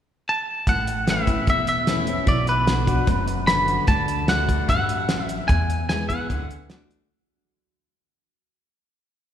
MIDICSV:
0, 0, Header, 1, 5, 480
1, 0, Start_track
1, 0, Key_signature, 2, "major"
1, 0, Tempo, 401338
1, 801, Time_signature, 4, 2, 24, 8
1, 11165, End_track
2, 0, Start_track
2, 0, Title_t, "Clean electric guitar"
2, 0, Program_c, 0, 27
2, 348, Note_on_c, 0, 81, 78
2, 820, Note_off_c, 0, 81, 0
2, 825, Note_on_c, 0, 78, 79
2, 1307, Note_off_c, 0, 78, 0
2, 1319, Note_on_c, 0, 76, 78
2, 1748, Note_off_c, 0, 76, 0
2, 1792, Note_on_c, 0, 76, 82
2, 2001, Note_off_c, 0, 76, 0
2, 2016, Note_on_c, 0, 76, 80
2, 2732, Note_on_c, 0, 74, 84
2, 2751, Note_off_c, 0, 76, 0
2, 2951, Note_off_c, 0, 74, 0
2, 2977, Note_on_c, 0, 71, 89
2, 4124, Note_off_c, 0, 71, 0
2, 4154, Note_on_c, 0, 83, 98
2, 4636, Note_off_c, 0, 83, 0
2, 4641, Note_on_c, 0, 81, 85
2, 5127, Note_off_c, 0, 81, 0
2, 5132, Note_on_c, 0, 78, 91
2, 5602, Note_off_c, 0, 78, 0
2, 5617, Note_on_c, 0, 78, 82
2, 6274, Note_off_c, 0, 78, 0
2, 6274, Note_on_c, 0, 76, 82
2, 6524, Note_off_c, 0, 76, 0
2, 6551, Note_on_c, 0, 80, 78
2, 7005, Note_off_c, 0, 80, 0
2, 7046, Note_on_c, 0, 80, 82
2, 7270, Note_off_c, 0, 80, 0
2, 7279, Note_on_c, 0, 78, 75
2, 8195, Note_off_c, 0, 78, 0
2, 11165, End_track
3, 0, Start_track
3, 0, Title_t, "Steel-string acoustic guitar"
3, 0, Program_c, 1, 25
3, 804, Note_on_c, 1, 45, 71
3, 1280, Note_on_c, 1, 52, 51
3, 1289, Note_on_c, 1, 57, 60
3, 1295, Note_on_c, 1, 61, 57
3, 1304, Note_on_c, 1, 64, 62
3, 1504, Note_off_c, 1, 64, 0
3, 1511, Note_off_c, 1, 52, 0
3, 1516, Note_off_c, 1, 57, 0
3, 1518, Note_on_c, 1, 64, 58
3, 1519, Note_off_c, 1, 61, 0
3, 1541, Note_on_c, 1, 61, 45
3, 1715, Note_off_c, 1, 45, 0
3, 1751, Note_off_c, 1, 64, 0
3, 1758, Note_on_c, 1, 40, 76
3, 1762, Note_off_c, 1, 61, 0
3, 2241, Note_on_c, 1, 52, 59
3, 2255, Note_on_c, 1, 57, 55
3, 2260, Note_on_c, 1, 61, 56
3, 2262, Note_on_c, 1, 64, 69
3, 2462, Note_off_c, 1, 64, 0
3, 2472, Note_off_c, 1, 52, 0
3, 2476, Note_on_c, 1, 64, 51
3, 2480, Note_off_c, 1, 57, 0
3, 2482, Note_off_c, 1, 61, 0
3, 2500, Note_on_c, 1, 61, 39
3, 2673, Note_off_c, 1, 40, 0
3, 2710, Note_off_c, 1, 64, 0
3, 2712, Note_on_c, 1, 47, 76
3, 2722, Note_off_c, 1, 61, 0
3, 3194, Note_on_c, 1, 50, 56
3, 3201, Note_on_c, 1, 59, 58
3, 3208, Note_on_c, 1, 62, 57
3, 3217, Note_on_c, 1, 66, 58
3, 3418, Note_off_c, 1, 66, 0
3, 3430, Note_off_c, 1, 50, 0
3, 3432, Note_on_c, 1, 66, 53
3, 3433, Note_off_c, 1, 59, 0
3, 3437, Note_off_c, 1, 62, 0
3, 3456, Note_on_c, 1, 62, 41
3, 3631, Note_off_c, 1, 47, 0
3, 3669, Note_off_c, 1, 66, 0
3, 3673, Note_on_c, 1, 42, 70
3, 3681, Note_off_c, 1, 62, 0
3, 4160, Note_on_c, 1, 50, 62
3, 4168, Note_on_c, 1, 59, 59
3, 4173, Note_on_c, 1, 62, 55
3, 4183, Note_on_c, 1, 66, 60
3, 4592, Note_off_c, 1, 42, 0
3, 4619, Note_off_c, 1, 50, 0
3, 4623, Note_off_c, 1, 59, 0
3, 4626, Note_off_c, 1, 62, 0
3, 4631, Note_off_c, 1, 66, 0
3, 4645, Note_on_c, 1, 50, 77
3, 5105, Note_off_c, 1, 50, 0
3, 5120, Note_on_c, 1, 50, 56
3, 5132, Note_on_c, 1, 57, 55
3, 5142, Note_on_c, 1, 62, 66
3, 5145, Note_on_c, 1, 66, 60
3, 5580, Note_off_c, 1, 50, 0
3, 5586, Note_off_c, 1, 57, 0
3, 5591, Note_off_c, 1, 62, 0
3, 5592, Note_off_c, 1, 66, 0
3, 5602, Note_on_c, 1, 43, 74
3, 6061, Note_off_c, 1, 43, 0
3, 6088, Note_on_c, 1, 42, 85
3, 6544, Note_off_c, 1, 42, 0
3, 6576, Note_on_c, 1, 40, 79
3, 7050, Note_on_c, 1, 52, 57
3, 7058, Note_on_c, 1, 56, 62
3, 7069, Note_on_c, 1, 59, 64
3, 7072, Note_on_c, 1, 64, 63
3, 7279, Note_off_c, 1, 52, 0
3, 7280, Note_off_c, 1, 64, 0
3, 7283, Note_off_c, 1, 56, 0
3, 7289, Note_off_c, 1, 59, 0
3, 7294, Note_on_c, 1, 64, 49
3, 7317, Note_on_c, 1, 59, 46
3, 7484, Note_off_c, 1, 40, 0
3, 7521, Note_off_c, 1, 64, 0
3, 7532, Note_off_c, 1, 59, 0
3, 7540, Note_on_c, 1, 50, 80
3, 7993, Note_off_c, 1, 50, 0
3, 8008, Note_on_c, 1, 50, 56
3, 8017, Note_on_c, 1, 57, 59
3, 8028, Note_on_c, 1, 62, 60
3, 8034, Note_on_c, 1, 66, 55
3, 8463, Note_off_c, 1, 50, 0
3, 8467, Note_off_c, 1, 57, 0
3, 8473, Note_off_c, 1, 62, 0
3, 8476, Note_off_c, 1, 66, 0
3, 11165, End_track
4, 0, Start_track
4, 0, Title_t, "Upright bass"
4, 0, Program_c, 2, 32
4, 806, Note_on_c, 2, 33, 83
4, 1640, Note_off_c, 2, 33, 0
4, 1766, Note_on_c, 2, 28, 73
4, 2601, Note_off_c, 2, 28, 0
4, 2714, Note_on_c, 2, 35, 86
4, 3554, Note_off_c, 2, 35, 0
4, 3678, Note_on_c, 2, 30, 84
4, 4517, Note_off_c, 2, 30, 0
4, 4637, Note_on_c, 2, 38, 93
4, 5477, Note_off_c, 2, 38, 0
4, 5613, Note_on_c, 2, 33, 73
4, 6446, Note_off_c, 2, 33, 0
4, 6570, Note_on_c, 2, 40, 81
4, 7404, Note_off_c, 2, 40, 0
4, 7535, Note_on_c, 2, 38, 79
4, 8366, Note_off_c, 2, 38, 0
4, 11165, End_track
5, 0, Start_track
5, 0, Title_t, "Drums"
5, 802, Note_on_c, 9, 36, 94
5, 804, Note_on_c, 9, 42, 77
5, 921, Note_off_c, 9, 36, 0
5, 923, Note_off_c, 9, 42, 0
5, 1045, Note_on_c, 9, 42, 58
5, 1165, Note_off_c, 9, 42, 0
5, 1286, Note_on_c, 9, 38, 99
5, 1286, Note_on_c, 9, 42, 80
5, 1405, Note_off_c, 9, 38, 0
5, 1405, Note_off_c, 9, 42, 0
5, 1523, Note_on_c, 9, 36, 78
5, 1526, Note_on_c, 9, 42, 63
5, 1643, Note_off_c, 9, 36, 0
5, 1645, Note_off_c, 9, 42, 0
5, 1763, Note_on_c, 9, 36, 85
5, 1767, Note_on_c, 9, 42, 72
5, 1883, Note_off_c, 9, 36, 0
5, 1887, Note_off_c, 9, 42, 0
5, 2000, Note_on_c, 9, 42, 61
5, 2119, Note_off_c, 9, 42, 0
5, 2239, Note_on_c, 9, 38, 97
5, 2239, Note_on_c, 9, 42, 73
5, 2358, Note_off_c, 9, 38, 0
5, 2358, Note_off_c, 9, 42, 0
5, 2475, Note_on_c, 9, 42, 62
5, 2594, Note_off_c, 9, 42, 0
5, 2715, Note_on_c, 9, 42, 70
5, 2717, Note_on_c, 9, 36, 92
5, 2834, Note_off_c, 9, 42, 0
5, 2836, Note_off_c, 9, 36, 0
5, 2956, Note_on_c, 9, 42, 53
5, 3076, Note_off_c, 9, 42, 0
5, 3198, Note_on_c, 9, 38, 104
5, 3198, Note_on_c, 9, 42, 82
5, 3318, Note_off_c, 9, 38, 0
5, 3318, Note_off_c, 9, 42, 0
5, 3438, Note_on_c, 9, 36, 82
5, 3441, Note_on_c, 9, 42, 60
5, 3558, Note_off_c, 9, 36, 0
5, 3560, Note_off_c, 9, 42, 0
5, 3677, Note_on_c, 9, 36, 89
5, 3677, Note_on_c, 9, 42, 74
5, 3796, Note_off_c, 9, 42, 0
5, 3797, Note_off_c, 9, 36, 0
5, 3917, Note_on_c, 9, 42, 59
5, 4037, Note_off_c, 9, 42, 0
5, 4159, Note_on_c, 9, 38, 107
5, 4159, Note_on_c, 9, 42, 78
5, 4278, Note_off_c, 9, 38, 0
5, 4278, Note_off_c, 9, 42, 0
5, 4400, Note_on_c, 9, 42, 52
5, 4519, Note_off_c, 9, 42, 0
5, 4633, Note_on_c, 9, 42, 72
5, 4639, Note_on_c, 9, 36, 106
5, 4752, Note_off_c, 9, 42, 0
5, 4759, Note_off_c, 9, 36, 0
5, 4881, Note_on_c, 9, 42, 54
5, 5001, Note_off_c, 9, 42, 0
5, 5119, Note_on_c, 9, 38, 111
5, 5119, Note_on_c, 9, 42, 79
5, 5239, Note_off_c, 9, 38, 0
5, 5239, Note_off_c, 9, 42, 0
5, 5366, Note_on_c, 9, 36, 75
5, 5370, Note_on_c, 9, 42, 61
5, 5486, Note_off_c, 9, 36, 0
5, 5490, Note_off_c, 9, 42, 0
5, 5608, Note_on_c, 9, 36, 95
5, 5610, Note_on_c, 9, 42, 74
5, 5727, Note_off_c, 9, 36, 0
5, 5729, Note_off_c, 9, 42, 0
5, 5849, Note_on_c, 9, 42, 64
5, 5969, Note_off_c, 9, 42, 0
5, 6085, Note_on_c, 9, 38, 98
5, 6085, Note_on_c, 9, 42, 84
5, 6204, Note_off_c, 9, 38, 0
5, 6204, Note_off_c, 9, 42, 0
5, 6327, Note_on_c, 9, 42, 63
5, 6447, Note_off_c, 9, 42, 0
5, 6567, Note_on_c, 9, 42, 80
5, 6570, Note_on_c, 9, 36, 103
5, 6687, Note_off_c, 9, 42, 0
5, 6689, Note_off_c, 9, 36, 0
5, 6813, Note_on_c, 9, 42, 60
5, 6933, Note_off_c, 9, 42, 0
5, 7049, Note_on_c, 9, 38, 104
5, 7049, Note_on_c, 9, 42, 83
5, 7169, Note_off_c, 9, 38, 0
5, 7169, Note_off_c, 9, 42, 0
5, 7291, Note_on_c, 9, 36, 71
5, 7294, Note_on_c, 9, 42, 61
5, 7410, Note_off_c, 9, 36, 0
5, 7414, Note_off_c, 9, 42, 0
5, 7533, Note_on_c, 9, 36, 94
5, 7535, Note_on_c, 9, 42, 72
5, 7653, Note_off_c, 9, 36, 0
5, 7655, Note_off_c, 9, 42, 0
5, 7780, Note_on_c, 9, 42, 58
5, 7900, Note_off_c, 9, 42, 0
5, 8009, Note_on_c, 9, 38, 99
5, 8009, Note_on_c, 9, 42, 71
5, 8129, Note_off_c, 9, 38, 0
5, 8129, Note_off_c, 9, 42, 0
5, 8259, Note_on_c, 9, 42, 58
5, 8379, Note_off_c, 9, 42, 0
5, 11165, End_track
0, 0, End_of_file